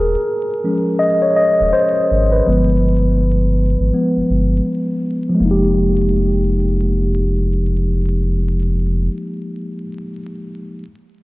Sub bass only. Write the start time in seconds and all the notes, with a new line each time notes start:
Already playing: D#1
1.61 D#1
2.11 G#1
2.47 G1
3.80 G#1
4.17 G1
4.30 G1
5.40 F1